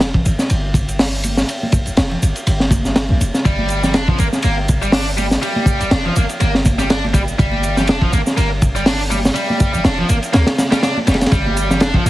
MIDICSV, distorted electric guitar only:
0, 0, Header, 1, 2, 480
1, 0, Start_track
1, 0, Tempo, 491803
1, 1453, Time_signature, 4, 2, 24, 8
1, 11809, End_track
2, 0, Start_track
2, 0, Title_t, "Distorted electric guitar"
2, 0, Program_c, 0, 30
2, 3371, Note_on_c, 0, 55, 77
2, 3733, Note_off_c, 0, 55, 0
2, 3745, Note_on_c, 0, 55, 70
2, 3847, Note_off_c, 0, 55, 0
2, 3851, Note_on_c, 0, 62, 80
2, 3980, Note_off_c, 0, 62, 0
2, 3983, Note_on_c, 0, 53, 70
2, 4069, Note_off_c, 0, 53, 0
2, 4090, Note_on_c, 0, 58, 71
2, 4155, Note_off_c, 0, 58, 0
2, 4333, Note_on_c, 0, 58, 74
2, 4439, Note_off_c, 0, 58, 0
2, 4704, Note_on_c, 0, 55, 99
2, 4789, Note_off_c, 0, 55, 0
2, 4811, Note_on_c, 0, 62, 73
2, 4939, Note_off_c, 0, 62, 0
2, 5047, Note_on_c, 0, 55, 67
2, 5114, Note_off_c, 0, 55, 0
2, 5289, Note_on_c, 0, 55, 79
2, 5652, Note_off_c, 0, 55, 0
2, 5664, Note_on_c, 0, 55, 72
2, 5766, Note_off_c, 0, 55, 0
2, 5770, Note_on_c, 0, 62, 73
2, 5899, Note_off_c, 0, 62, 0
2, 5904, Note_on_c, 0, 53, 74
2, 5990, Note_off_c, 0, 53, 0
2, 6016, Note_on_c, 0, 58, 72
2, 6078, Note_off_c, 0, 58, 0
2, 6251, Note_on_c, 0, 58, 74
2, 6358, Note_off_c, 0, 58, 0
2, 6626, Note_on_c, 0, 55, 93
2, 6711, Note_off_c, 0, 55, 0
2, 6733, Note_on_c, 0, 62, 72
2, 6861, Note_off_c, 0, 62, 0
2, 6970, Note_on_c, 0, 55, 66
2, 7035, Note_off_c, 0, 55, 0
2, 7211, Note_on_c, 0, 55, 79
2, 7573, Note_off_c, 0, 55, 0
2, 7584, Note_on_c, 0, 55, 71
2, 7686, Note_off_c, 0, 55, 0
2, 7690, Note_on_c, 0, 62, 79
2, 7819, Note_off_c, 0, 62, 0
2, 7825, Note_on_c, 0, 53, 68
2, 7910, Note_off_c, 0, 53, 0
2, 7930, Note_on_c, 0, 58, 70
2, 7996, Note_off_c, 0, 58, 0
2, 8170, Note_on_c, 0, 58, 77
2, 8278, Note_off_c, 0, 58, 0
2, 8543, Note_on_c, 0, 55, 99
2, 8629, Note_off_c, 0, 55, 0
2, 8647, Note_on_c, 0, 62, 77
2, 8777, Note_off_c, 0, 62, 0
2, 8888, Note_on_c, 0, 55, 74
2, 8954, Note_off_c, 0, 55, 0
2, 9122, Note_on_c, 0, 55, 83
2, 9488, Note_off_c, 0, 55, 0
2, 9498, Note_on_c, 0, 55, 70
2, 9603, Note_off_c, 0, 55, 0
2, 9605, Note_on_c, 0, 62, 77
2, 9736, Note_off_c, 0, 62, 0
2, 9740, Note_on_c, 0, 53, 69
2, 9827, Note_off_c, 0, 53, 0
2, 9847, Note_on_c, 0, 58, 66
2, 9914, Note_off_c, 0, 58, 0
2, 10083, Note_on_c, 0, 58, 71
2, 10194, Note_off_c, 0, 58, 0
2, 10460, Note_on_c, 0, 55, 96
2, 10548, Note_off_c, 0, 55, 0
2, 10566, Note_on_c, 0, 62, 75
2, 10697, Note_off_c, 0, 62, 0
2, 10808, Note_on_c, 0, 55, 70
2, 10874, Note_off_c, 0, 55, 0
2, 11048, Note_on_c, 0, 55, 77
2, 11411, Note_off_c, 0, 55, 0
2, 11423, Note_on_c, 0, 55, 73
2, 11526, Note_off_c, 0, 55, 0
2, 11529, Note_on_c, 0, 62, 76
2, 11659, Note_off_c, 0, 62, 0
2, 11662, Note_on_c, 0, 53, 69
2, 11748, Note_off_c, 0, 53, 0
2, 11772, Note_on_c, 0, 58, 70
2, 11809, Note_off_c, 0, 58, 0
2, 11809, End_track
0, 0, End_of_file